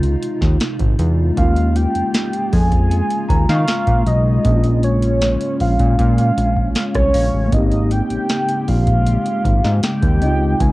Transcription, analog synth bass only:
0.00 0.16 C#2 loud
0.42 0.58 D#2 medium
0.80 0.96 G#1 loud
0.99 1.32 E2 loud
1.37 1.87 D#2 loud
1.95 2.03 F2 soft
2.53 3.02 F2 loud
3.29 3.46 D#2 medium
3.49 3.65 D#3 loud
3.87 4.04 A#2 medium
4.06 4.39 B1 loud
4.45 5.37 A#1 loud
5.61 5.77 A#1 medium
5.80 5.96 A#2 loud
5.99 6.32 A#2 loud
6.38 6.70 A#1 medium
6.95 7.11 C2 loud
7.15 7.31 A#1 loud
7.34 7.50 A1 medium
7.53 8.02 G#1 loud
8.11 8.18 A#1 medium
8.68 9.18 A#1 medium
9.45 9.61 G#1 medium
9.64 9.81 G#2 loud
10.03 10.23 D#2 medium
10.22 10.55 C#2 medium
10.60 10.72 C#2 loud

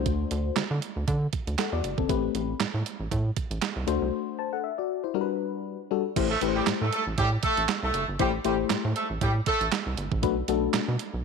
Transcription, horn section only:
6.31 6.40 A3 medium
6.31 6.40 A4 medium
6.56 6.65 G3 medium
6.56 6.65 G4 medium
6.82 6.91 A3 medium
6.82 6.91 A4 medium
6.93 7.04 A3 medium
6.93 7.04 A4 medium
7.18 7.30 G3 medium
7.18 7.30 G4 loud
7.44 7.64 A3 loud
7.44 7.64 A4 loud
7.84 8.04 A3 medium
7.84 8.04 A4 loud
8.20 8.31 G3 loud
8.20 8.31 G4 loud
8.46 8.57 G3 medium
8.46 8.57 G4 medium
8.96 9.08 A3 medium
8.96 9.08 A4 medium
9.22 9.33 G3 medium
9.22 9.33 G4 medium
9.47 9.67 A3 loud
9.47 9.67 A4 loud

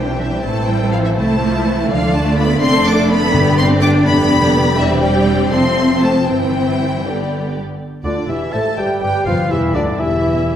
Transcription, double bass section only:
0.00 0.43 B1 medium
0.43 1.16 A1 medium
1.17 1.90 C2 medium
1.89 2.60 D2 medium
2.61 3.32 F1 medium
3.33 4.06 G1 medium
4.05 4.78 F1 medium
4.78 5.52 E1 medium
5.51 6.26 F1 medium
6.28 7.03 G1 medium
7.04 7.58 G1 medium
8.04 8.12 D2 soft
8.28 8.36 E1 soft
8.53 8.61 A1 medium
8.78 8.86 G1 soft
9.02 9.10 G1 medium
9.26 9.34 F1 medium
9.50 9.74 E1 medium
9.75 9.99 D2 medium
9.99 10.56 E1 medium

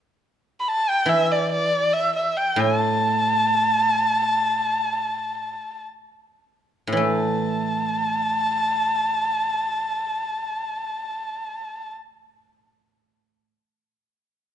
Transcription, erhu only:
0.60 0.70 B5 medium
0.68 0.91 A5 medium
0.89 1.10 G5 medium
1.09 1.33 E5 medium
1.31 1.51 D5 medium
1.52 1.95 D5 medium
1.93 2.14 E5 medium
2.16 2.38 E5 medium
2.37 2.61 G5 medium
2.60 2.79 G#5 medium
2.79 5.84 A5 medium
7.01 11.91 A5 medium

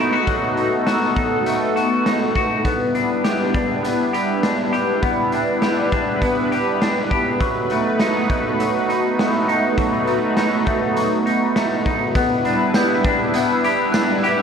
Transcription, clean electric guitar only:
0.00 0.26 F#3 medium
0.00 1.45 A3 medium
0.00 0.56 D#4 medium
0.00 0.13 E4 medium
0.13 0.85 F#4 medium
0.27 2.65 F#3 medium
0.57 1.15 D#4 soft
0.86 1.75 F#4 medium
1.16 2.05 D#4 medium
1.47 2.65 A3 medium
1.76 2.34 F#4 medium
2.06 2.71 D#4 medium
2.36 2.71 F#4 medium
2.65 3.83 B3 medium
2.95 3.53 D4 soft
3.24 4.12 G4 medium
3.54 4.42 D4 soft
3.83 5.02 B3 medium
4.13 4.71 G4 medium
4.43 5.31 D4 soft
4.73 5.61 G4 medium
5.02 6.22 B3 medium
5.32 5.91 D4 medium
5.62 6.51 G4 medium
5.92 6.80 D4 medium
6.22 7.71 B3 medium
6.52 7.10 G4 medium
6.82 7.47 D4 medium
7.11 7.46 G4 medium
7.40 8.58 F#3 medium
7.71 8.28 A3 soft
8.00 8.87 D#4 medium
8.30 9.17 A3 medium
8.59 9.76 F#3 medium
8.89 9.47 D#4 medium
9.18 10.06 A3 medium
9.48 10.35 D#4 medium
9.78 10.95 F#3 medium
10.07 10.65 A3 medium
10.37 11.25 D#4 medium
10.66 11.54 A3 medium
10.96 12.21 F#3 medium
11.26 11.85 D#4 medium
11.56 12.15 A3 medium
11.86 12.22 D#4 medium
12.16 12.75 B3 medium
12.45 13.03 D4 medium
12.75 13.34 B3 medium
13.05 13.93 D4 medium
13.34 14.42 B3 medium
13.64 14.22 G4 medium
13.94 14.42 D4 medium
14.23 14.42 G4 medium

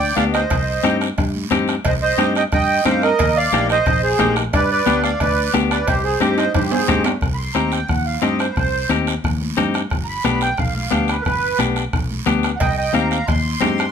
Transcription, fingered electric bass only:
0.00 0.11 D2 medium
0.17 0.44 D2 medium
0.51 0.78 C2 loud
0.84 1.11 G2 medium
1.18 1.45 G2 loud
1.51 1.78 G2 medium
1.85 2.12 C2 loud
2.18 2.45 G2 loud
2.52 2.79 G2 loud
2.85 3.12 G2 medium
3.20 3.47 D#2 medium
3.52 3.80 A#1 medium
3.86 4.13 A#1 loud
4.20 4.47 A#1 medium
4.54 4.80 G2 loud
4.87 5.14 D2 loud
5.21 5.48 D2 loud
5.55 5.81 D2 medium
5.88 6.15 C2 loud
6.21 6.48 G2 loud
6.55 6.82 G2 loud
6.89 7.16 G2 medium
7.22 7.49 C2 medium
7.55 7.82 D#2 medium
7.89 8.16 D#2 medium
8.22 8.50 G2 medium
8.57 8.84 C2 loud
8.89 9.17 D#2 medium
9.24 9.51 D#2 loud
9.57 9.85 G2 medium
9.91 10.18 G1 loud
10.24 10.52 B1 medium
10.59 10.86 B1 medium
10.92 11.19 D2 medium
11.26 11.53 G1 medium
11.59 11.86 B1 medium
11.93 12.20 B1 medium
12.27 12.54 D2 medium
12.61 12.88 C2 medium
12.94 13.21 D#2 medium
13.28 13.55 D#2 loud
13.62 13.89 G2 medium

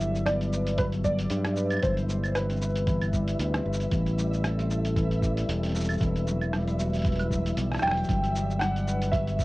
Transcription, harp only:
0.00 0.77 F#3 medium
0.00 1.03 G3 medium
0.00 0.46 A3 medium
0.00 0.26 B3 medium
0.00 0.41 D4 medium
0.00 2.24 E4 medium
0.26 1.30 B3 medium
0.41 1.45 D4 medium
0.52 1.57 B4 medium
0.78 1.88 F#3 medium
1.04 1.88 G3 medium
1.30 2.35 B3 medium
1.45 4.25 D4 medium
1.57 2.55 B4 medium
1.83 2.86 E3 medium
2.09 3.12 G3 medium
2.35 2.55 B3 medium
2.49 2.67 C4 medium
2.61 3.60 B4 medium
2.87 3.90 E3 medium
3.13 3.97 G3 medium
3.39 3.60 B3 medium
3.54 3.71 C4 medium
3.65 4.64 B4 medium
3.92 4.94 E3 medium
4.18 5.21 G3 medium
4.43 5.48 A3 medium
4.58 5.63 C4 medium
4.70 5.74 A4 medium
4.96 6.00 E3 medium
5.22 6.05 G3 medium
5.48 8.81 A3 medium
5.63 6.73 C4 medium
5.75 7.94 A4 medium
6.01 7.04 E3 medium
6.27 7.30 F#3 medium
6.53 7.55 G3 medium
6.67 7.71 B3 medium
6.78 7.63 F#4 medium
7.05 8.14 E3 medium
7.31 8.07 F#3 medium
7.57 8.14 G3 medium
7.71 9.45 B3 medium
7.82 8.41 F#4 medium
8.08 9.12 F#3 medium
8.35 8.59 G3 medium
8.60 9.38 G3 loud
8.75 9.45 D4 medium
8.87 9.45 B4 medium
9.13 9.45 F#3 medium
9.39 9.45 G3 medium

